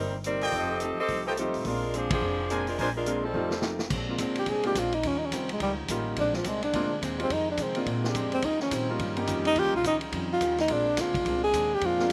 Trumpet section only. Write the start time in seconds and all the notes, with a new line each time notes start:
0.41 F4 A4 D#5 G5
1.25 F4 A4 D#5 G5
2.50 D4 A#4 C5 G#5
2.79 D4 A#4 C5 G#5